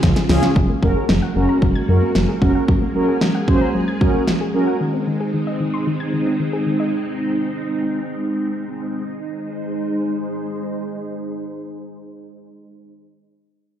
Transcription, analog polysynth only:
0.29 C#4 F4 G#4
0.82 C#4 F#4 A#4
1.36 C#4 F#4 A#4
1.89 C#4 F#4 A#4
2.42 C#4 F#4 A#4
2.95 C#4 F#4 A#4
3.48 C#4 F#4 C5
4.01 C#4 F#4 A#4
4.54 C#4 F#4 A#4

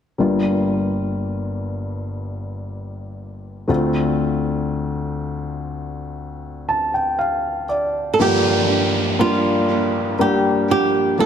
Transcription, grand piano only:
0.18 G1 G2 G3 A#3 D4 F4
3.67 D2 D3 A3 C4 D4 F4
6.69 A5
6.94 G5
7.19 F5
7.69 D5
8.19 G2 G3 A#3 D4 F4
9.19 G3 A#3 D4 F4
10.19 G3 A#3 D4 G4
11.18 G3 A#3 D4 F4

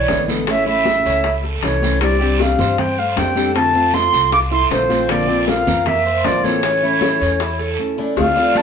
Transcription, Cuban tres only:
Already playing: D4
0.29 A4
0.48 C#4
0.67 E4
1.06 C#4
1.25 E4
1.44 A4
1.83 C4
2.21 G4
2.59 C5
2.98 C5
3.36 A4
3.55 C4
3.74 F4
4.13 C4
4.32 F4
4.52 A4
4.90 C4
5.29 F4
5.67 A#4
6.06 C5
6.44 A4
6.64 C#4
6.84 E4
7.22 C#4
7.41 E4
7.59 A4
7.98 D4
8.16 A4
8.36 D4

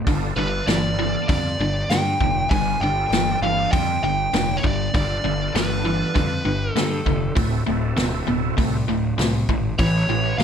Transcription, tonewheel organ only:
0.04 B3 D4 F4 A4
0.36 B3 D4 F4 A4
2.49 B3 D4 F4 B4
2.81 B3 D4 F4 A4
4.93 B3 D4 F4 A4
5.22 B3 D4 F4 A4
7.35 C4 E4 F#4 A4
7.67 C4 E4 F#4 A4
9.79 C#4 E4 G4 B4
10.08 E3 C#4 G4 B4

